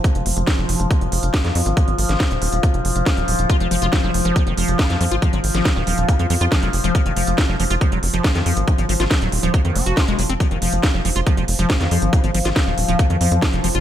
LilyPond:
<<
  \new Staff \with { instrumentName = "Acid bass" } { \clef bass \time 4/4 \key f \phrygian \tempo 4 = 139 r1 | r1 | f'16 f16 f16 f'16 f16 ges16 r16 f16 f16 ees16 f8 f'16 f16 f16 f'16 | f16 ges16 r16 f16 r16 ees16 f8 f'16 f16 f16 f'16 f16 ges16 r16 f16 |
r16 ees16 f8 f'16 f16 f16 f'16 f16 ges16 r16 f16 f16 ees16 f8 | f'16 f16 f16 f'16 f16 ges16 r16 f16 f16 ees16 c'16 ges'16 f'16 aes16 ges16 c'16 | f16 ees16 f8 f'16 f16 f16 f'16 f16 f16 r16 f16 f16 ees16 f8 | f'16 f16 f16 f'16 f16 f16 r16 f16 f16 ees16 f8 f'16 f16 f16 f'16 | }
  \new Staff \with { instrumentName = "Synth drone" } { \clef bass \time 4/4 \key f \phrygian f1~ | f1~ | f1~ | f1~ |
f1~ | f1 | f1~ | f1 | }
  \new Staff \with { instrumentName = "Analog synth bass" } { \clef bass \time 4/4 \key f \phrygian r16 f,,16 f,,16 f,,16 r16 f,,16 f,,16 f,,16 r16 f,,16 f,,16 f,,16 r16 f,16 f,16 aes,,16 | r16 aes,,16 aes,,16 aes,,16 r16 ees,,16 ees,,16 ees,,16 r16 f,,16 f,,16 f,,16 r16 ees,,16 ees,,16 ees,,16 | r16 f,,16 f,,16 f,,16 r16 f,,16 f,,16 f,,16 r16 f,,16 f,,16 f,,16 r16 f,16 f,16 aes,,16 | r16 aes,,16 aes,,16 aes,,16 r16 ees,,16 ees,,16 ees,,16 r16 f,16 f,16 f,16 r16 f,,16 f,,16 f,,16 |
r16 f,,16 f,,16 f,,16 r16 f,,16 f,,16 f,,16 r16 f,,16 f,,16 f,,16 r16 f,16 f,16 aes,,16 | r16 aes,,16 aes,,16 aes,,16 r16 ees,,16 ees,,16 ees,,16 r16 f,16 f,,16 f,,16 r16 f,,16 f,,16 f,,16 | r16 f,,16 f,,16 f,,16 r16 f,,16 f,,16 f,,16 r16 f,,16 f,,16 f,,16 r16 f,16 f,16 aes,,16 | r16 aes,,16 aes,,16 aes,,16 r16 ees,,16 ees,,16 ees,,16 r16 f,16 f,16 f,16 r16 f,,16 f,,16 f,,16 | }
  \new DrumStaff \with { instrumentName = "Drums" } \drummode { \time 4/4 <hh bd>16 hh16 hho16 hh16 <hh bd sn>8 hho16 hh16 <hh bd>16 hh16 hho16 hh16 <hh bd sn>16 <hh sn>16 hho16 hh16 | <hh bd>16 hh16 hho16 <hh sn>16 <hh bd sn>16 hh16 hho16 hh16 <hh bd>16 hh16 hho16 hh16 <hh bd sn>16 hh16 hho16 hh16 | <hh bd>16 hh16 hho16 hh16 <hh bd sn>8 hho16 hh16 <hh bd>16 hh16 hho16 hh16 <hh bd sn>16 <hh sn>16 hho16 hh16 | <hh bd>16 hh16 hho16 <hh sn>16 <hh bd sn>8 hho16 hh16 <hh bd>16 hh16 hho16 hh16 <hh bd sn>16 hh16 hho16 hh16 |
<hh bd>16 hh16 hho16 hh16 <hh bd sn>8 hho16 hh16 <hh bd>16 hh16 hho16 hh16 <hh bd sn>16 <hh sn>16 hho16 hh16 | <hh bd>16 hh16 hho16 <hh sn>16 <hh bd sn>16 hh16 hho16 hh16 <hh bd>16 hh16 hho16 hh16 <hh bd sn>16 hh16 hho16 hh16 | <hh bd>16 hh16 hho16 hh16 <hh bd sn>8 hho16 hh16 <hh bd>16 hh16 hho16 hh16 <hh bd sn>16 <hh sn>16 hho16 hh16 | <hh bd>16 hh16 hho16 <hh sn>16 <hh bd sn>8 hho16 hh16 <hh bd>16 hh16 hho16 hh16 <hh bd sn>16 hh16 hho16 hh16 | }
>>